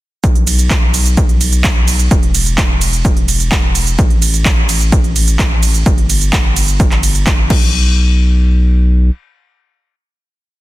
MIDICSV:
0, 0, Header, 1, 3, 480
1, 0, Start_track
1, 0, Tempo, 468750
1, 242, Time_signature, 4, 2, 24, 8
1, 10856, End_track
2, 0, Start_track
2, 0, Title_t, "Sub bass"
2, 0, Program_c, 0, 38
2, 242, Note_on_c, 0, 35, 90
2, 2138, Note_off_c, 0, 35, 0
2, 2162, Note_on_c, 0, 28, 88
2, 4058, Note_off_c, 0, 28, 0
2, 4082, Note_on_c, 0, 33, 92
2, 5978, Note_off_c, 0, 33, 0
2, 6002, Note_on_c, 0, 31, 93
2, 7676, Note_off_c, 0, 31, 0
2, 7682, Note_on_c, 0, 35, 98
2, 9321, Note_off_c, 0, 35, 0
2, 10856, End_track
3, 0, Start_track
3, 0, Title_t, "Drums"
3, 242, Note_on_c, 9, 36, 118
3, 243, Note_on_c, 9, 42, 82
3, 244, Note_on_c, 9, 69, 34
3, 345, Note_off_c, 9, 36, 0
3, 345, Note_off_c, 9, 42, 0
3, 347, Note_off_c, 9, 69, 0
3, 363, Note_on_c, 9, 42, 39
3, 465, Note_off_c, 9, 42, 0
3, 483, Note_on_c, 9, 46, 110
3, 483, Note_on_c, 9, 51, 73
3, 484, Note_on_c, 9, 69, 78
3, 585, Note_off_c, 9, 46, 0
3, 585, Note_off_c, 9, 51, 0
3, 587, Note_off_c, 9, 69, 0
3, 603, Note_on_c, 9, 42, 53
3, 604, Note_on_c, 9, 69, 42
3, 705, Note_off_c, 9, 42, 0
3, 707, Note_off_c, 9, 69, 0
3, 721, Note_on_c, 9, 39, 127
3, 722, Note_on_c, 9, 36, 116
3, 722, Note_on_c, 9, 42, 87
3, 724, Note_on_c, 9, 69, 35
3, 824, Note_off_c, 9, 39, 0
3, 825, Note_off_c, 9, 36, 0
3, 825, Note_off_c, 9, 42, 0
3, 826, Note_off_c, 9, 69, 0
3, 962, Note_on_c, 9, 46, 93
3, 962, Note_on_c, 9, 51, 72
3, 964, Note_on_c, 9, 69, 77
3, 1065, Note_off_c, 9, 46, 0
3, 1065, Note_off_c, 9, 51, 0
3, 1066, Note_off_c, 9, 69, 0
3, 1082, Note_on_c, 9, 42, 54
3, 1084, Note_on_c, 9, 69, 45
3, 1185, Note_off_c, 9, 42, 0
3, 1186, Note_off_c, 9, 69, 0
3, 1202, Note_on_c, 9, 36, 120
3, 1202, Note_on_c, 9, 42, 83
3, 1204, Note_on_c, 9, 69, 34
3, 1304, Note_off_c, 9, 36, 0
3, 1304, Note_off_c, 9, 42, 0
3, 1306, Note_off_c, 9, 69, 0
3, 1322, Note_on_c, 9, 42, 39
3, 1424, Note_off_c, 9, 42, 0
3, 1442, Note_on_c, 9, 46, 102
3, 1442, Note_on_c, 9, 51, 75
3, 1443, Note_on_c, 9, 69, 80
3, 1544, Note_off_c, 9, 46, 0
3, 1544, Note_off_c, 9, 51, 0
3, 1546, Note_off_c, 9, 69, 0
3, 1562, Note_on_c, 9, 42, 59
3, 1563, Note_on_c, 9, 69, 45
3, 1664, Note_off_c, 9, 42, 0
3, 1666, Note_off_c, 9, 69, 0
3, 1680, Note_on_c, 9, 39, 127
3, 1682, Note_on_c, 9, 36, 120
3, 1682, Note_on_c, 9, 42, 83
3, 1683, Note_on_c, 9, 69, 34
3, 1783, Note_off_c, 9, 39, 0
3, 1784, Note_off_c, 9, 36, 0
3, 1784, Note_off_c, 9, 42, 0
3, 1786, Note_off_c, 9, 69, 0
3, 1921, Note_on_c, 9, 46, 92
3, 1921, Note_on_c, 9, 51, 75
3, 1923, Note_on_c, 9, 69, 78
3, 2024, Note_off_c, 9, 46, 0
3, 2024, Note_off_c, 9, 51, 0
3, 2026, Note_off_c, 9, 69, 0
3, 2042, Note_on_c, 9, 42, 54
3, 2044, Note_on_c, 9, 69, 45
3, 2144, Note_off_c, 9, 42, 0
3, 2146, Note_off_c, 9, 69, 0
3, 2162, Note_on_c, 9, 36, 118
3, 2162, Note_on_c, 9, 42, 83
3, 2164, Note_on_c, 9, 69, 33
3, 2264, Note_off_c, 9, 36, 0
3, 2264, Note_off_c, 9, 42, 0
3, 2266, Note_off_c, 9, 69, 0
3, 2282, Note_on_c, 9, 42, 38
3, 2384, Note_off_c, 9, 42, 0
3, 2402, Note_on_c, 9, 46, 109
3, 2402, Note_on_c, 9, 51, 76
3, 2404, Note_on_c, 9, 69, 77
3, 2504, Note_off_c, 9, 46, 0
3, 2504, Note_off_c, 9, 51, 0
3, 2506, Note_off_c, 9, 69, 0
3, 2522, Note_on_c, 9, 42, 53
3, 2524, Note_on_c, 9, 69, 42
3, 2624, Note_off_c, 9, 42, 0
3, 2626, Note_off_c, 9, 69, 0
3, 2641, Note_on_c, 9, 39, 127
3, 2642, Note_on_c, 9, 36, 119
3, 2642, Note_on_c, 9, 42, 83
3, 2644, Note_on_c, 9, 69, 34
3, 2743, Note_off_c, 9, 39, 0
3, 2744, Note_off_c, 9, 36, 0
3, 2744, Note_off_c, 9, 42, 0
3, 2746, Note_off_c, 9, 69, 0
3, 2882, Note_on_c, 9, 46, 96
3, 2882, Note_on_c, 9, 51, 73
3, 2884, Note_on_c, 9, 69, 75
3, 2984, Note_off_c, 9, 46, 0
3, 2984, Note_off_c, 9, 51, 0
3, 2986, Note_off_c, 9, 69, 0
3, 3002, Note_on_c, 9, 42, 54
3, 3004, Note_on_c, 9, 69, 43
3, 3104, Note_off_c, 9, 42, 0
3, 3106, Note_off_c, 9, 69, 0
3, 3122, Note_on_c, 9, 36, 127
3, 3122, Note_on_c, 9, 42, 84
3, 3124, Note_on_c, 9, 69, 33
3, 3224, Note_off_c, 9, 36, 0
3, 3225, Note_off_c, 9, 42, 0
3, 3226, Note_off_c, 9, 69, 0
3, 3242, Note_on_c, 9, 42, 38
3, 3345, Note_off_c, 9, 42, 0
3, 3362, Note_on_c, 9, 46, 112
3, 3362, Note_on_c, 9, 51, 75
3, 3364, Note_on_c, 9, 69, 77
3, 3465, Note_off_c, 9, 46, 0
3, 3465, Note_off_c, 9, 51, 0
3, 3466, Note_off_c, 9, 69, 0
3, 3483, Note_on_c, 9, 42, 56
3, 3484, Note_on_c, 9, 69, 45
3, 3585, Note_off_c, 9, 42, 0
3, 3587, Note_off_c, 9, 69, 0
3, 3601, Note_on_c, 9, 39, 122
3, 3602, Note_on_c, 9, 36, 125
3, 3602, Note_on_c, 9, 42, 81
3, 3604, Note_on_c, 9, 69, 32
3, 3704, Note_off_c, 9, 36, 0
3, 3704, Note_off_c, 9, 39, 0
3, 3705, Note_off_c, 9, 42, 0
3, 3706, Note_off_c, 9, 69, 0
3, 3842, Note_on_c, 9, 46, 96
3, 3842, Note_on_c, 9, 51, 76
3, 3844, Note_on_c, 9, 69, 76
3, 3944, Note_off_c, 9, 46, 0
3, 3944, Note_off_c, 9, 51, 0
3, 3946, Note_off_c, 9, 69, 0
3, 3962, Note_on_c, 9, 42, 56
3, 3964, Note_on_c, 9, 69, 44
3, 4065, Note_off_c, 9, 42, 0
3, 4066, Note_off_c, 9, 69, 0
3, 4082, Note_on_c, 9, 36, 124
3, 4082, Note_on_c, 9, 42, 75
3, 4084, Note_on_c, 9, 69, 32
3, 4184, Note_off_c, 9, 36, 0
3, 4185, Note_off_c, 9, 42, 0
3, 4187, Note_off_c, 9, 69, 0
3, 4202, Note_on_c, 9, 42, 36
3, 4305, Note_off_c, 9, 42, 0
3, 4322, Note_on_c, 9, 46, 113
3, 4322, Note_on_c, 9, 51, 76
3, 4324, Note_on_c, 9, 69, 75
3, 4424, Note_off_c, 9, 46, 0
3, 4424, Note_off_c, 9, 51, 0
3, 4426, Note_off_c, 9, 69, 0
3, 4442, Note_on_c, 9, 42, 51
3, 4444, Note_on_c, 9, 69, 41
3, 4544, Note_off_c, 9, 42, 0
3, 4546, Note_off_c, 9, 69, 0
3, 4561, Note_on_c, 9, 39, 127
3, 4562, Note_on_c, 9, 36, 126
3, 4562, Note_on_c, 9, 42, 84
3, 4564, Note_on_c, 9, 69, 33
3, 4664, Note_off_c, 9, 39, 0
3, 4665, Note_off_c, 9, 36, 0
3, 4665, Note_off_c, 9, 42, 0
3, 4666, Note_off_c, 9, 69, 0
3, 4802, Note_on_c, 9, 46, 97
3, 4802, Note_on_c, 9, 51, 77
3, 4804, Note_on_c, 9, 69, 74
3, 4904, Note_off_c, 9, 46, 0
3, 4904, Note_off_c, 9, 51, 0
3, 4906, Note_off_c, 9, 69, 0
3, 4922, Note_on_c, 9, 42, 51
3, 4924, Note_on_c, 9, 69, 43
3, 5024, Note_off_c, 9, 42, 0
3, 5026, Note_off_c, 9, 69, 0
3, 5042, Note_on_c, 9, 36, 127
3, 5042, Note_on_c, 9, 42, 82
3, 5044, Note_on_c, 9, 69, 34
3, 5144, Note_off_c, 9, 36, 0
3, 5144, Note_off_c, 9, 42, 0
3, 5146, Note_off_c, 9, 69, 0
3, 5162, Note_on_c, 9, 42, 35
3, 5265, Note_off_c, 9, 42, 0
3, 5282, Note_on_c, 9, 46, 113
3, 5282, Note_on_c, 9, 51, 76
3, 5284, Note_on_c, 9, 69, 75
3, 5385, Note_off_c, 9, 46, 0
3, 5385, Note_off_c, 9, 51, 0
3, 5386, Note_off_c, 9, 69, 0
3, 5402, Note_on_c, 9, 42, 55
3, 5404, Note_on_c, 9, 69, 44
3, 5505, Note_off_c, 9, 42, 0
3, 5506, Note_off_c, 9, 69, 0
3, 5521, Note_on_c, 9, 39, 121
3, 5522, Note_on_c, 9, 36, 127
3, 5522, Note_on_c, 9, 42, 80
3, 5524, Note_on_c, 9, 69, 32
3, 5624, Note_off_c, 9, 36, 0
3, 5624, Note_off_c, 9, 39, 0
3, 5625, Note_off_c, 9, 42, 0
3, 5627, Note_off_c, 9, 69, 0
3, 5762, Note_on_c, 9, 46, 100
3, 5762, Note_on_c, 9, 51, 78
3, 5764, Note_on_c, 9, 69, 75
3, 5865, Note_off_c, 9, 46, 0
3, 5865, Note_off_c, 9, 51, 0
3, 5867, Note_off_c, 9, 69, 0
3, 5882, Note_on_c, 9, 42, 54
3, 5884, Note_on_c, 9, 69, 45
3, 5984, Note_off_c, 9, 42, 0
3, 5986, Note_off_c, 9, 69, 0
3, 6002, Note_on_c, 9, 36, 124
3, 6002, Note_on_c, 9, 42, 77
3, 6004, Note_on_c, 9, 69, 34
3, 6104, Note_off_c, 9, 36, 0
3, 6104, Note_off_c, 9, 42, 0
3, 6106, Note_off_c, 9, 69, 0
3, 6122, Note_on_c, 9, 42, 37
3, 6225, Note_off_c, 9, 42, 0
3, 6242, Note_on_c, 9, 46, 111
3, 6242, Note_on_c, 9, 51, 81
3, 6244, Note_on_c, 9, 69, 78
3, 6344, Note_off_c, 9, 46, 0
3, 6344, Note_off_c, 9, 51, 0
3, 6346, Note_off_c, 9, 69, 0
3, 6362, Note_on_c, 9, 42, 50
3, 6364, Note_on_c, 9, 69, 44
3, 6464, Note_off_c, 9, 42, 0
3, 6466, Note_off_c, 9, 69, 0
3, 6481, Note_on_c, 9, 39, 125
3, 6482, Note_on_c, 9, 36, 124
3, 6482, Note_on_c, 9, 42, 78
3, 6484, Note_on_c, 9, 69, 35
3, 6584, Note_off_c, 9, 36, 0
3, 6584, Note_off_c, 9, 39, 0
3, 6585, Note_off_c, 9, 42, 0
3, 6586, Note_off_c, 9, 69, 0
3, 6722, Note_on_c, 9, 46, 96
3, 6722, Note_on_c, 9, 51, 78
3, 6724, Note_on_c, 9, 69, 78
3, 6824, Note_off_c, 9, 46, 0
3, 6824, Note_off_c, 9, 51, 0
3, 6826, Note_off_c, 9, 69, 0
3, 6842, Note_on_c, 9, 42, 49
3, 6843, Note_on_c, 9, 69, 44
3, 6944, Note_off_c, 9, 42, 0
3, 6946, Note_off_c, 9, 69, 0
3, 6962, Note_on_c, 9, 36, 127
3, 6962, Note_on_c, 9, 42, 80
3, 6964, Note_on_c, 9, 69, 33
3, 7064, Note_off_c, 9, 36, 0
3, 7064, Note_off_c, 9, 42, 0
3, 7066, Note_off_c, 9, 69, 0
3, 7081, Note_on_c, 9, 39, 36
3, 7082, Note_on_c, 9, 42, 35
3, 7183, Note_off_c, 9, 39, 0
3, 7184, Note_off_c, 9, 42, 0
3, 7201, Note_on_c, 9, 46, 109
3, 7201, Note_on_c, 9, 51, 83
3, 7203, Note_on_c, 9, 69, 76
3, 7304, Note_off_c, 9, 46, 0
3, 7304, Note_off_c, 9, 51, 0
3, 7306, Note_off_c, 9, 69, 0
3, 7321, Note_on_c, 9, 42, 51
3, 7323, Note_on_c, 9, 69, 46
3, 7424, Note_off_c, 9, 42, 0
3, 7426, Note_off_c, 9, 69, 0
3, 7441, Note_on_c, 9, 39, 119
3, 7442, Note_on_c, 9, 36, 127
3, 7442, Note_on_c, 9, 42, 77
3, 7444, Note_on_c, 9, 69, 33
3, 7543, Note_off_c, 9, 39, 0
3, 7544, Note_off_c, 9, 36, 0
3, 7544, Note_off_c, 9, 42, 0
3, 7546, Note_off_c, 9, 69, 0
3, 7682, Note_on_c, 9, 36, 114
3, 7682, Note_on_c, 9, 49, 89
3, 7784, Note_off_c, 9, 36, 0
3, 7784, Note_off_c, 9, 49, 0
3, 10856, End_track
0, 0, End_of_file